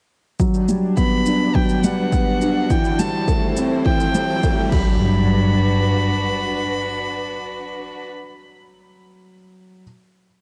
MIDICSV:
0, 0, Header, 1, 8, 480
1, 0, Start_track
1, 0, Key_signature, 1, "major"
1, 0, Tempo, 576923
1, 331, Time_signature, 4, 2, 24, 8
1, 8663, End_track
2, 0, Start_track
2, 0, Title_t, "Violin"
2, 0, Program_c, 0, 40
2, 815, Note_on_c, 0, 83, 95
2, 1292, Note_on_c, 0, 79, 87
2, 1305, Note_off_c, 0, 83, 0
2, 1532, Note_on_c, 0, 78, 86
2, 1545, Note_off_c, 0, 79, 0
2, 2253, Note_on_c, 0, 79, 92
2, 2266, Note_off_c, 0, 78, 0
2, 2490, Note_on_c, 0, 81, 89
2, 2503, Note_off_c, 0, 79, 0
2, 2971, Note_off_c, 0, 81, 0
2, 3208, Note_on_c, 0, 79, 118
2, 3896, Note_off_c, 0, 79, 0
2, 3931, Note_on_c, 0, 83, 100
2, 6724, Note_off_c, 0, 83, 0
2, 8663, End_track
3, 0, Start_track
3, 0, Title_t, "String section"
3, 0, Program_c, 1, 48
3, 601, Note_on_c, 1, 62, 69
3, 1191, Note_on_c, 1, 66, 73
3, 1191, Note_on_c, 1, 71, 64
3, 2249, Note_off_c, 1, 71, 0
3, 2535, Note_on_c, 1, 72, 79
3, 2686, Note_on_c, 1, 64, 68
3, 3017, Note_off_c, 1, 66, 0
3, 3020, Note_off_c, 1, 62, 0
3, 3033, Note_on_c, 1, 69, 69
3, 3928, Note_off_c, 1, 64, 0
3, 3928, Note_off_c, 1, 69, 0
3, 3929, Note_off_c, 1, 72, 0
3, 4004, Note_on_c, 1, 62, 75
3, 4317, Note_on_c, 1, 66, 75
3, 4387, Note_on_c, 1, 71, 73
3, 6724, Note_off_c, 1, 62, 0
3, 6724, Note_off_c, 1, 66, 0
3, 6724, Note_off_c, 1, 71, 0
3, 8663, End_track
4, 0, Start_track
4, 0, Title_t, "Felt piano"
4, 0, Program_c, 2, 0
4, 329, Note_on_c, 2, 54, 91
4, 483, Control_c, 2, 64, 127
4, 558, Note_off_c, 2, 54, 0
4, 571, Note_on_c, 2, 55, 67
4, 799, Note_off_c, 2, 55, 0
4, 808, Note_on_c, 2, 59, 89
4, 1038, Note_off_c, 2, 59, 0
4, 1050, Note_on_c, 2, 62, 65
4, 1188, Note_off_c, 2, 62, 0
4, 1290, Note_on_c, 2, 54, 91
4, 1519, Note_off_c, 2, 54, 0
4, 1530, Note_on_c, 2, 55, 70
4, 1759, Note_off_c, 2, 55, 0
4, 1771, Note_on_c, 2, 59, 85
4, 1908, Note_off_c, 2, 59, 0
4, 2011, Note_on_c, 2, 62, 69
4, 2239, Note_off_c, 2, 62, 0
4, 2251, Note_on_c, 2, 52, 99
4, 2262, Control_c, 2, 64, 0
4, 2389, Control_c, 2, 64, 127
4, 2479, Note_off_c, 2, 52, 0
4, 2489, Note_on_c, 2, 55, 70
4, 2718, Note_off_c, 2, 55, 0
4, 2727, Note_on_c, 2, 57, 79
4, 2866, Note_off_c, 2, 57, 0
4, 2968, Note_on_c, 2, 60, 80
4, 3198, Note_off_c, 2, 60, 0
4, 3205, Note_on_c, 2, 52, 102
4, 3436, Note_off_c, 2, 52, 0
4, 3448, Note_on_c, 2, 55, 74
4, 3678, Note_off_c, 2, 55, 0
4, 3689, Note_on_c, 2, 57, 75
4, 3918, Note_off_c, 2, 57, 0
4, 3928, Note_on_c, 2, 54, 88
4, 3944, Control_c, 2, 64, 0
4, 4033, Control_c, 2, 64, 127
4, 4184, Control_c, 2, 64, 0
4, 4345, Control_c, 2, 64, 127
4, 4376, Note_off_c, 2, 54, 0
4, 8181, Control_c, 2, 64, 0
4, 8663, End_track
5, 0, Start_track
5, 0, Title_t, "Cello section"
5, 0, Program_c, 3, 48
5, 450, Note_on_c, 3, 43, 87
5, 529, Note_off_c, 3, 43, 0
5, 572, Note_on_c, 3, 43, 74
5, 727, Note_off_c, 3, 43, 0
5, 1048, Note_on_c, 3, 43, 91
5, 1205, Note_off_c, 3, 43, 0
5, 1531, Note_on_c, 3, 43, 92
5, 1687, Note_off_c, 3, 43, 0
5, 2009, Note_on_c, 3, 38, 85
5, 2166, Note_off_c, 3, 38, 0
5, 2370, Note_on_c, 3, 45, 97
5, 2448, Note_off_c, 3, 45, 0
5, 2491, Note_on_c, 3, 45, 84
5, 2647, Note_off_c, 3, 45, 0
5, 2969, Note_on_c, 3, 45, 100
5, 3126, Note_off_c, 3, 45, 0
5, 3450, Note_on_c, 3, 45, 101
5, 3606, Note_off_c, 3, 45, 0
5, 3931, Note_on_c, 3, 43, 108
5, 5578, Note_off_c, 3, 43, 0
5, 8663, End_track
6, 0, Start_track
6, 0, Title_t, "Impact"
6, 0, Program_c, 4, 103
6, 3930, Note_on_c, 4, 60, 70
6, 6858, Note_off_c, 4, 60, 0
6, 8663, End_track
7, 0, Start_track
7, 0, Title_t, "Riser"
7, 0, Program_c, 5, 103
7, 330, Note_on_c, 5, 60, 70
7, 3931, Note_off_c, 5, 60, 0
7, 8663, End_track
8, 0, Start_track
8, 0, Title_t, "Drums"
8, 329, Note_on_c, 9, 82, 40
8, 330, Note_on_c, 9, 36, 94
8, 412, Note_off_c, 9, 82, 0
8, 413, Note_off_c, 9, 36, 0
8, 449, Note_on_c, 9, 82, 25
8, 532, Note_off_c, 9, 82, 0
8, 570, Note_on_c, 9, 82, 53
8, 653, Note_off_c, 9, 82, 0
8, 809, Note_on_c, 9, 82, 37
8, 810, Note_on_c, 9, 36, 85
8, 892, Note_off_c, 9, 82, 0
8, 893, Note_off_c, 9, 36, 0
8, 1048, Note_on_c, 9, 82, 55
8, 1131, Note_off_c, 9, 82, 0
8, 1290, Note_on_c, 9, 36, 99
8, 1373, Note_off_c, 9, 36, 0
8, 1408, Note_on_c, 9, 82, 36
8, 1491, Note_off_c, 9, 82, 0
8, 1528, Note_on_c, 9, 82, 59
8, 1611, Note_off_c, 9, 82, 0
8, 1768, Note_on_c, 9, 82, 37
8, 1769, Note_on_c, 9, 36, 97
8, 1851, Note_off_c, 9, 82, 0
8, 1852, Note_off_c, 9, 36, 0
8, 2009, Note_on_c, 9, 82, 56
8, 2092, Note_off_c, 9, 82, 0
8, 2249, Note_on_c, 9, 82, 43
8, 2250, Note_on_c, 9, 36, 104
8, 2332, Note_off_c, 9, 82, 0
8, 2333, Note_off_c, 9, 36, 0
8, 2369, Note_on_c, 9, 82, 31
8, 2453, Note_off_c, 9, 82, 0
8, 2489, Note_on_c, 9, 82, 63
8, 2572, Note_off_c, 9, 82, 0
8, 2729, Note_on_c, 9, 36, 100
8, 2730, Note_on_c, 9, 82, 39
8, 2812, Note_off_c, 9, 36, 0
8, 2813, Note_off_c, 9, 82, 0
8, 2968, Note_on_c, 9, 82, 66
8, 3052, Note_off_c, 9, 82, 0
8, 3209, Note_on_c, 9, 36, 106
8, 3293, Note_off_c, 9, 36, 0
8, 3329, Note_on_c, 9, 82, 43
8, 3412, Note_off_c, 9, 82, 0
8, 3450, Note_on_c, 9, 82, 61
8, 3533, Note_off_c, 9, 82, 0
8, 3689, Note_on_c, 9, 82, 43
8, 3690, Note_on_c, 9, 36, 107
8, 3772, Note_off_c, 9, 82, 0
8, 3773, Note_off_c, 9, 36, 0
8, 3929, Note_on_c, 9, 49, 85
8, 3930, Note_on_c, 9, 36, 115
8, 4012, Note_off_c, 9, 49, 0
8, 4013, Note_off_c, 9, 36, 0
8, 8663, End_track
0, 0, End_of_file